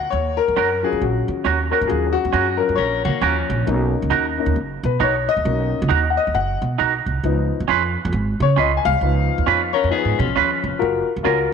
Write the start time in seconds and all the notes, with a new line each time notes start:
Already playing: F#5
0.10 D#2 C#5
0.37 A#4
0.48 F2
0.56 F#2 C#4 F#4 A#4
0.83 F#3 C#4 F4 G#4
0.93 F#2
1.01 A#1 F#4
1.28 D#3
1.45 D#2 C#4 F#4 A#4
1.71 C#4 F#4 A#4
1.81 F#2
1.87 D#2 F#3 C#4 F4 G#4
2.07 G#4
2.13 F#4
2.25 F2
2.33 F#2 C#4 F#4 A#4
2.57 F#3 C#4 F4 A#4
2.69 F#2
2.75 A#1 C#4 A#4 C#5
3.05 D#3 A#3 F#4
3.21 D#2 F3 C#4 F#4 A#4
3.50 A#1
3.66 B1 A#3 C#4 D#4
4.02 C#2
4.10 D#2 D#4 F#4 A#4
4.38 A#3 C#4 D#4
4.46 D#2
4.56 F#1
4.83 B2 B4
5.00 B1 D#4 F#4 A#4 C#5
5.29 D#5
5.37 D#2
5.45 B1 A#3 C#4 D#4
5.82 C#2
5.89 D#2 D#4 F#4 A#4
6.10 F#5
6.17 D#5
6.27 D#2
6.34 F#1 F#5
6.62 B2
6.78 B1 D#4 F#4 A#4
7.06 C2
7.24 C#2 F3 B3 D#4
7.60 D#2
7.68 F2 C#4 F4 B4
8.05 F2
8.12 G#1
8.40 C#3 C#5
8.56 C#2 C#4 F4 B4 D#5
8.77 G#5
8.85 C2 F5
9.01 C#2 F3 B3 D#4
9.38 D#2
9.46 F2 C#4 F4 B4
9.73 C#4 A#4 C#5
9.84 F2
9.90 F3 B3 D#4 G#4
10.05 G#2
10.19 B2 F3 C#4
10.28 B1
10.36 D#2 C#4 F4 B4
10.64 F1
10.79 F#1 F4 F#4 A#4
11.16 F#1
11.23 C#2 C#4 F4 F#4 A#4